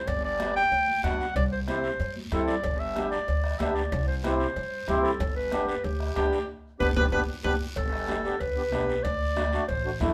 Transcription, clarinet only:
0, 0, Header, 1, 2, 480
1, 0, Start_track
1, 0, Key_signature, 1, "major"
1, 0, Tempo, 320342
1, 115, Time_signature, 4, 2, 24, 8
1, 15189, End_track
2, 0, Start_track
2, 0, Title_t, "Clarinet"
2, 0, Program_c, 0, 71
2, 111, Note_on_c, 0, 74, 100
2, 353, Note_off_c, 0, 74, 0
2, 371, Note_on_c, 0, 74, 101
2, 810, Note_off_c, 0, 74, 0
2, 843, Note_on_c, 0, 79, 108
2, 1509, Note_off_c, 0, 79, 0
2, 1552, Note_on_c, 0, 78, 94
2, 2000, Note_off_c, 0, 78, 0
2, 2043, Note_on_c, 0, 74, 100
2, 2149, Note_off_c, 0, 74, 0
2, 2279, Note_on_c, 0, 72, 86
2, 2386, Note_off_c, 0, 72, 0
2, 2512, Note_on_c, 0, 72, 93
2, 3252, Note_off_c, 0, 72, 0
2, 3705, Note_on_c, 0, 74, 99
2, 4190, Note_on_c, 0, 76, 91
2, 4213, Note_off_c, 0, 74, 0
2, 4656, Note_off_c, 0, 76, 0
2, 4665, Note_on_c, 0, 74, 100
2, 5382, Note_on_c, 0, 76, 84
2, 5404, Note_off_c, 0, 74, 0
2, 5627, Note_on_c, 0, 74, 94
2, 5649, Note_off_c, 0, 76, 0
2, 6105, Note_off_c, 0, 74, 0
2, 6114, Note_on_c, 0, 72, 81
2, 6222, Note_off_c, 0, 72, 0
2, 6343, Note_on_c, 0, 72, 87
2, 7546, Note_on_c, 0, 69, 88
2, 7568, Note_off_c, 0, 72, 0
2, 8024, Note_off_c, 0, 69, 0
2, 8033, Note_on_c, 0, 71, 99
2, 8481, Note_off_c, 0, 71, 0
2, 8514, Note_on_c, 0, 71, 88
2, 8765, Note_on_c, 0, 67, 86
2, 8787, Note_off_c, 0, 71, 0
2, 9721, Note_off_c, 0, 67, 0
2, 10188, Note_on_c, 0, 71, 90
2, 10306, Note_off_c, 0, 71, 0
2, 10438, Note_on_c, 0, 71, 101
2, 10553, Note_off_c, 0, 71, 0
2, 10676, Note_on_c, 0, 71, 91
2, 10791, Note_off_c, 0, 71, 0
2, 11151, Note_on_c, 0, 71, 81
2, 11268, Note_off_c, 0, 71, 0
2, 11647, Note_on_c, 0, 69, 93
2, 12591, Note_on_c, 0, 71, 102
2, 12614, Note_off_c, 0, 69, 0
2, 13537, Note_on_c, 0, 74, 112
2, 13559, Note_off_c, 0, 71, 0
2, 14496, Note_off_c, 0, 74, 0
2, 14504, Note_on_c, 0, 72, 98
2, 14956, Note_off_c, 0, 72, 0
2, 15189, End_track
0, 0, End_of_file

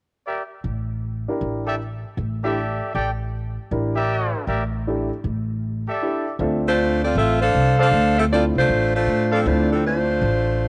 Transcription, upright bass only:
0, 0, Header, 1, 2, 480
1, 0, Start_track
1, 0, Key_signature, -1, "minor"
1, 0, Tempo, 382897
1, 332, Time_signature, 4, 2, 24, 8
1, 13388, End_track
2, 0, Start_track
2, 0, Title_t, "Upright bass"
2, 0, Program_c, 0, 32
2, 803, Note_on_c, 0, 33, 71
2, 1577, Note_off_c, 0, 33, 0
2, 1768, Note_on_c, 0, 33, 69
2, 2540, Note_off_c, 0, 33, 0
2, 2723, Note_on_c, 0, 33, 72
2, 3499, Note_off_c, 0, 33, 0
2, 3693, Note_on_c, 0, 33, 72
2, 4464, Note_off_c, 0, 33, 0
2, 4653, Note_on_c, 0, 33, 76
2, 5425, Note_off_c, 0, 33, 0
2, 5607, Note_on_c, 0, 33, 71
2, 6382, Note_off_c, 0, 33, 0
2, 6570, Note_on_c, 0, 33, 70
2, 7343, Note_off_c, 0, 33, 0
2, 8013, Note_on_c, 0, 38, 76
2, 8926, Note_off_c, 0, 38, 0
2, 8969, Note_on_c, 0, 33, 81
2, 9418, Note_off_c, 0, 33, 0
2, 9461, Note_on_c, 0, 36, 74
2, 9904, Note_off_c, 0, 36, 0
2, 9922, Note_on_c, 0, 38, 82
2, 10662, Note_off_c, 0, 38, 0
2, 10721, Note_on_c, 0, 36, 62
2, 10883, Note_off_c, 0, 36, 0
2, 10893, Note_on_c, 0, 33, 82
2, 11339, Note_off_c, 0, 33, 0
2, 11368, Note_on_c, 0, 45, 76
2, 11816, Note_off_c, 0, 45, 0
2, 11856, Note_on_c, 0, 38, 83
2, 12765, Note_off_c, 0, 38, 0
2, 12806, Note_on_c, 0, 33, 86
2, 13388, Note_off_c, 0, 33, 0
2, 13388, End_track
0, 0, End_of_file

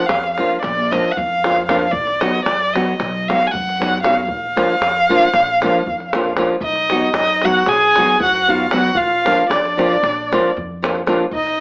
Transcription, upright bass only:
0, 0, Header, 1, 2, 480
1, 0, Start_track
1, 0, Tempo, 521739
1, 1775, Time_signature, 9, 3, 24, 8
1, 10675, End_track
2, 0, Start_track
2, 0, Title_t, "Upright bass"
2, 0, Program_c, 0, 32
2, 86, Note_on_c, 0, 41, 88
2, 386, Note_off_c, 0, 41, 0
2, 587, Note_on_c, 0, 34, 104
2, 885, Note_off_c, 0, 34, 0
2, 1084, Note_on_c, 0, 41, 87
2, 1774, Note_on_c, 0, 35, 76
2, 1788, Note_off_c, 0, 41, 0
2, 2070, Note_off_c, 0, 35, 0
2, 2264, Note_on_c, 0, 42, 80
2, 2561, Note_off_c, 0, 42, 0
2, 2759, Note_on_c, 0, 35, 91
2, 3055, Note_off_c, 0, 35, 0
2, 3252, Note_on_c, 0, 42, 87
2, 3928, Note_on_c, 0, 34, 69
2, 3942, Note_off_c, 0, 42, 0
2, 4226, Note_off_c, 0, 34, 0
2, 4423, Note_on_c, 0, 41, 74
2, 4719, Note_off_c, 0, 41, 0
2, 4909, Note_on_c, 0, 34, 94
2, 5207, Note_off_c, 0, 34, 0
2, 5392, Note_on_c, 0, 41, 73
2, 5808, Note_off_c, 0, 41, 0
2, 6076, Note_on_c, 0, 35, 72
2, 6376, Note_off_c, 0, 35, 0
2, 6567, Note_on_c, 0, 42, 69
2, 6866, Note_off_c, 0, 42, 0
2, 7054, Note_on_c, 0, 35, 86
2, 7355, Note_off_c, 0, 35, 0
2, 7546, Note_on_c, 0, 42, 84
2, 7962, Note_off_c, 0, 42, 0
2, 8241, Note_on_c, 0, 34, 67
2, 8538, Note_off_c, 0, 34, 0
2, 8738, Note_on_c, 0, 41, 86
2, 9033, Note_off_c, 0, 41, 0
2, 9227, Note_on_c, 0, 34, 93
2, 9523, Note_off_c, 0, 34, 0
2, 9721, Note_on_c, 0, 41, 80
2, 10133, Note_off_c, 0, 41, 0
2, 10408, Note_on_c, 0, 35, 74
2, 10675, Note_off_c, 0, 35, 0
2, 10675, End_track
0, 0, End_of_file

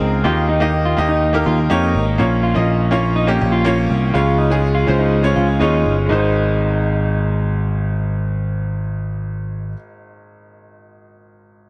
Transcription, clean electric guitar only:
0, 0, Header, 1, 2, 480
1, 0, Start_track
1, 0, Key_signature, -4, "major"
1, 0, Tempo, 487488
1, 239, Time_signature, 4, 2, 24, 8
1, 11515, End_track
2, 0, Start_track
2, 0, Title_t, "Clean electric guitar"
2, 0, Program_c, 0, 27
2, 237, Note_on_c, 0, 65, 96
2, 466, Note_off_c, 0, 65, 0
2, 480, Note_on_c, 0, 63, 70
2, 708, Note_off_c, 0, 63, 0
2, 841, Note_on_c, 0, 65, 77
2, 954, Note_off_c, 0, 65, 0
2, 1070, Note_on_c, 0, 63, 75
2, 1303, Note_off_c, 0, 63, 0
2, 1438, Note_on_c, 0, 65, 79
2, 1553, Note_off_c, 0, 65, 0
2, 1672, Note_on_c, 0, 63, 82
2, 2014, Note_off_c, 0, 63, 0
2, 2394, Note_on_c, 0, 65, 72
2, 2511, Note_off_c, 0, 65, 0
2, 3110, Note_on_c, 0, 63, 86
2, 3228, Note_off_c, 0, 63, 0
2, 3467, Note_on_c, 0, 65, 78
2, 3701, Note_off_c, 0, 65, 0
2, 4074, Note_on_c, 0, 65, 98
2, 4304, Note_off_c, 0, 65, 0
2, 4315, Note_on_c, 0, 63, 69
2, 4545, Note_off_c, 0, 63, 0
2, 4674, Note_on_c, 0, 65, 85
2, 4791, Note_off_c, 0, 65, 0
2, 4914, Note_on_c, 0, 63, 74
2, 5145, Note_off_c, 0, 63, 0
2, 5274, Note_on_c, 0, 65, 65
2, 5391, Note_off_c, 0, 65, 0
2, 5509, Note_on_c, 0, 63, 87
2, 5853, Note_off_c, 0, 63, 0
2, 5997, Note_on_c, 0, 63, 84
2, 7399, Note_off_c, 0, 63, 0
2, 11515, End_track
0, 0, End_of_file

